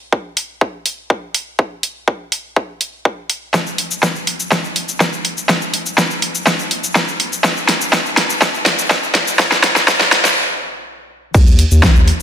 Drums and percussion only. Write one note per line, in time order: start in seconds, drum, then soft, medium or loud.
0.12 kick loud
0.37 open hi-hat loud
0.61 kick loud
0.86 open hi-hat loud
1.10 kick loud
1.34 open hi-hat loud
1.59 kick loud
1.83 open hi-hat loud
2.08 kick loud
2.32 open hi-hat loud
2.56 kick loud
2.81 open hi-hat loud
3.05 kick loud
3.30 open hi-hat loud
3.54 kick loud
3.54 snare soft
3.54 shaker soft
3.67 shaker soft
3.78 open hi-hat loud
3.91 shaker medium
4.03 kick loud
4.03 snare soft
4.03 shaker medium
4.15 shaker soft
4.27 open hi-hat loud
4.40 shaker medium
4.52 kick loud
4.52 snare medium
4.52 shaker medium
4.64 shaker soft
4.76 open hi-hat loud
4.89 shaker medium
5.00 kick loud
5.00 snare soft
5.00 shaker soft
5.13 shaker soft
5.25 open hi-hat loud
5.37 shaker medium
5.49 kick loud
5.49 snare medium
5.49 shaker medium
5.62 shaker soft
5.74 open hi-hat loud
5.86 shaker medium
5.98 kick loud
5.98 snare medium
5.98 shaker medium
6.10 shaker soft
6.22 open hi-hat loud
6.35 shaker medium
6.47 kick loud
6.47 snare medium
6.47 shaker medium
6.59 shaker soft
6.71 open hi-hat loud
6.84 shaker medium
6.95 kick loud
6.95 snare medium
6.95 shaker medium
7.08 shaker soft
7.20 open hi-hat loud
7.32 shaker medium
7.44 kick loud
7.44 snare medium
7.44 shaker medium
7.57 shaker soft
7.69 snare medium
7.69 open hi-hat loud
7.81 shaker medium
7.93 kick loud
7.93 snare medium
7.93 shaker medium
8.06 shaker soft
8.17 snare medium
8.17 open hi-hat loud
8.30 shaker medium
8.42 kick loud
8.42 snare medium
8.42 shaker medium
8.54 shaker soft
8.66 snare medium
8.66 open hi-hat loud
8.79 shaker medium
8.90 kick loud
8.90 snare medium
8.90 shaker medium
9.03 shaker soft
9.15 snare medium
9.15 open hi-hat loud
9.27 shaker medium
9.39 kick loud
9.39 snare medium
9.39 shaker medium
9.52 snare medium
9.52 shaker soft
9.64 snare loud
9.64 open hi-hat loud
9.76 kick medium
9.76 snare medium
9.76 shaker medium
9.88 kick loud
9.88 snare loud
9.88 shaker medium
10.01 snare medium
10.01 shaker soft
10.12 snare loud
10.12 open hi-hat loud
10.25 snare medium
10.25 shaker medium
11.34 kick loud
11.34 crash loud
11.34 shaker medium
11.47 shaker soft
11.59 open hi-hat loud
11.71 shaker medium
11.83 kick loud
11.83 snare loud
11.83 shaker medium
11.96 shaker soft
12.08 open hi-hat loud